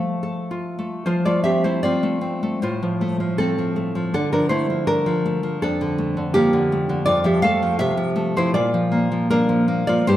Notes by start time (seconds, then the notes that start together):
Already playing: F3 A3 A4 F5
0.23 A4
0.51 F4
0.79 A3
1.06 F3 F4 C5
1.25 A3 F4 D5
1.44 C4 G4 E5
1.64 A3 E4 C5
1.83 C4 F4 D5
2.03 A3
2.21 C4
2.43 A3
2.62 A2 F4 C5
2.83 F3
3.01 A3
3.20 F3
3.38 A3 C4 A4
3.58 F3
3.76 A3
3.95 F3
4.14 D3 D4 A4
4.32 F3 D4 A#4
4.49 A3 E4 C5
4.70 F3
4.87 A3 D4 A#4
5.06 F3
5.26 A3
5.43 F3
5.62 F2 D4 A4
5.81 D3
5.98 A3
6.17 D3
6.34 F3 A#3 G4
6.53 D3
6.72 A3
6.89 D3
7.06 F2 F4 D5
7.24 F3 G4 E5
7.42 A3 A4 F5
7.63 F3
7.79 C3 G4 E5
7.97 F3
8.16 A3
8.37 F3 E4 C5
8.54 A#2 F4 D5
8.74 F3
8.92 A#3
9.12 F3
9.30 A#3 D4 A#4
9.49 F3
9.68 A#3
9.87 F3 F4 D5
10.07 G2 G4 C5